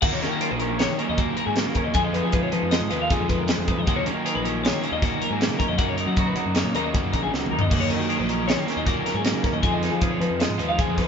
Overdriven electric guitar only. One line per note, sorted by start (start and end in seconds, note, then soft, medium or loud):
0.02 0.97 D#2 medium
0.02 0.97 A#2 loud
0.02 0.97 D#3 medium
0.02 0.98 F#3 medium
0.02 0.98 A#3 medium
0.02 0.98 D#4 loud
0.98 1.16 D#2 medium
0.98 1.17 A#2 medium
0.98 1.17 D#3 medium
0.98 1.17 F#3 medium
0.98 1.17 A#3 medium
0.98 1.19 D#4 medium
1.17 1.93 D#2 medium
1.17 1.93 A#2 medium
1.17 1.94 D#3 medium
1.17 1.94 F#3 medium
1.17 1.94 A#3 medium
1.17 1.96 D#4 medium
1.94 2.89 F2 medium
1.94 2.89 C3 loud
1.94 2.90 F3 medium
1.94 2.90 G#3 loud
1.94 2.90 D#4 loud
1.94 2.89 F4 loud
2.90 3.09 F2 medium
2.90 3.09 C3 medium
2.90 3.09 F3 medium
2.90 3.09 G#3 medium
2.90 3.11 D#4 medium
2.90 3.08 F4 medium
3.10 3.85 F2 medium
3.10 3.85 C3 medium
3.10 3.86 F3 medium
3.10 3.86 G#3 medium
3.10 3.87 D#4 medium
3.10 3.86 F4 medium
3.86 4.81 D#2 medium
3.86 4.81 A#2 medium
3.86 4.82 D#3 loud
3.86 4.83 F#3 medium
3.86 4.82 A#3 loud
3.86 4.81 D#4 loud
4.82 5.00 D#2 medium
4.82 5.01 A#2 medium
4.82 5.01 D#3 medium
4.82 5.02 F#3 medium
4.82 5.03 A#3 medium
4.82 5.03 D#4 medium
5.01 5.76 D#2 medium
5.01 5.77 A#2 medium
5.01 5.77 D#3 medium
5.01 5.78 F#3 medium
5.01 5.79 A#3 medium
5.01 5.79 D#4 medium
5.77 6.73 F#2 medium
5.77 6.73 C#3 medium
5.77 6.76 F#3 medium
5.77 6.75 A#3 loud
5.77 6.75 C#4 loud
5.77 6.74 D#4 loud
6.74 6.92 F#2 medium
6.74 6.93 C#3 medium
6.74 6.93 F#3 medium
6.74 6.93 A#3 medium
6.74 6.93 C#4 medium
6.74 6.95 D#4 medium
6.93 7.69 F#2 medium
6.93 7.69 C#3 medium
6.93 7.70 F#3 medium
6.93 7.70 A#3 medium
6.93 7.70 C#4 medium
6.93 7.71 D#4 medium
7.69 8.65 D#2 medium
7.69 8.65 A#2 medium
7.69 8.65 D#3 medium
7.69 8.65 F#3 medium
7.69 8.65 A#3 medium
7.69 8.65 D#4 loud
8.65 8.84 D#2 medium
8.65 8.84 A#2 medium
8.65 8.85 D#3 medium
8.65 8.85 F#3 medium
8.65 8.84 A#3 medium
8.65 8.87 D#4 medium
8.85 9.61 D#2 medium
8.85 9.61 A#2 medium
8.85 9.62 D#3 medium
8.85 9.62 F#3 medium
8.85 9.62 A#3 medium
8.85 9.63 D#4 medium
9.62 10.57 F2 loud
9.62 10.57 C3 medium
9.62 10.58 F3 medium
9.62 10.58 G#3 loud
9.62 10.58 D#4 loud
9.62 10.57 F4 loud
10.58 10.76 F2 medium
10.58 10.77 C3 medium
10.58 10.77 F3 medium
10.58 10.77 G#3 medium
10.58 10.79 D#4 medium
10.58 10.76 F4 medium
10.77 11.08 F2 medium
10.77 11.08 C3 medium
10.77 11.08 F3 medium
10.77 11.08 G#3 medium
10.77 11.08 D#4 medium
10.77 11.08 F4 medium